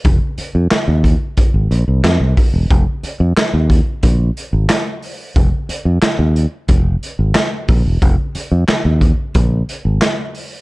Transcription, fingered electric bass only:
\new Staff \with { instrumentName = "Fingered electric bass" } { \clef bass \time 4/4 \key f \minor \tempo 4 = 90 f,,16 r8 f,16 r16 ees,8 r8 aes,,16 bes,,16 c,16 f,16 c,16 r16 e,,16 | f,,16 r8 f,16 r16 ees,8 r16 bes,,8 r16 aes,,16 r4 | f,,16 r8 f,16 r16 ees,8 r16 f,,8 r16 aes,,16 r8 bes,,16 e,,16 | f,,16 r8 f,16 r16 ees,8 r16 bes,,8 r16 aes,,16 r4 | }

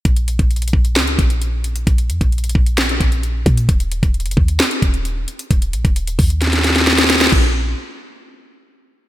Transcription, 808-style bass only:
\new Staff \with { instrumentName = "808-style bass" } { \clef bass \time 4/4 \key bes \minor \tempo 4 = 132 bes,,8. bes,,8. bes,,8 des,8 bes,,4. | bes,,8 f,16 bes,,8. bes,,4 bes,,4 bes,8 | ees,,8. ees,,8 ges,,16 ees,8 r8 ees,,4 r8 | ees,,8 bes,,16 ees,,8. ees,2~ ees,8 |
bes,,4 r2. | }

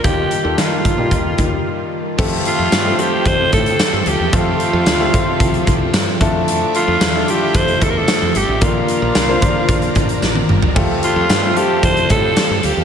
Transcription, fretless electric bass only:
\new Staff \with { instrumentName = "Fretless electric bass" } { \clef bass \time 4/4 \key f \major \tempo 4 = 112 ees,8 r16 ees,16 ees8 r16 bes,16 ees,8 ees,8 r4 | f,8 r16 f,16 g,8 r8 f,8 a,8 r16 g,16 d,16 e,16 | f,8 r16 f,16 d,8 r8 c,8 c,8 g,8 f,8~ | f,8 r16 f,16 e,8 r8 f,8 e,8 r16 f,16 g,,16 a,,16 |
bes,,8 r16 bes,,16 c,8 r8 bes,,8 a,,8 a,,8 g,,8 | f,8 r16 f,16 g,8 r8 f,8 a,8 r16 g,16 d,16 e,16 | }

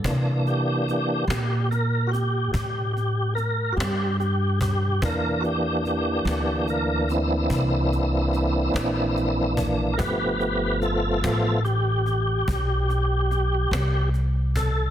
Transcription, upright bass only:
\new Staff \with { instrumentName = "Upright bass" } { \clef bass \time 12/8 \key c \major \tempo 4. = 48 c4. bes,4. a,4. g,4. | e,4. d,4. c,4. bes,,4. | g,,4. a,,4. b,,4. c,4. | }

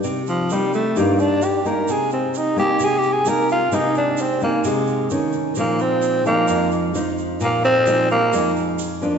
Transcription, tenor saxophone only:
\new Staff \with { instrumentName = "Tenor saxophone" } { \time 4/4 \key bes \mixolydian \tempo 4 = 130 r8 f8 g8 a8 bes8 d'8 g'8 bes'8 | aes'8 c'8 ees'8 g'8 \tuplet 3/2 { aes'8 g'8 aes'8 } bes'8 f'8 | ees'8 d'8 c'8 bes8 aes4 r4 | bes8 c'4 bes4 r4. |
bes8 c'4 bes4 r4. | }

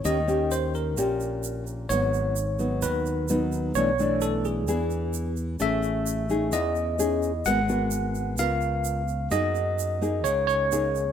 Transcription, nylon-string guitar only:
\new Staff \with { instrumentName = "Nylon-string guitar" } { \time 4/4 \key gis \phrygian \tempo 4 = 129 << { <ais cis' g'>8 <ais cis' g'>4. <ais cis' g'>2 | <fis b dis'>4 r8 <fis b dis'>4. <fis b dis'>4 | <e a d'>8 <e a d'>4. <b d' gis'>4. r8 | <cis' gis'>4. <cis' dis' gis'>4. <cis' dis' gis'>8 r8 |
<b fis' ais'>8 <b fis' ais'>4. <b eis' ais'>4. r8 | <ais dis' gis'>4. <ais dis' gis'>4. <ais dis' gis'>8 r8 | } \\ { dis2 ais,2 | gis,2 dis2 | b,2 e2 | a2 e2 |
gis2 cis2 | fis2 cis2 | } >> }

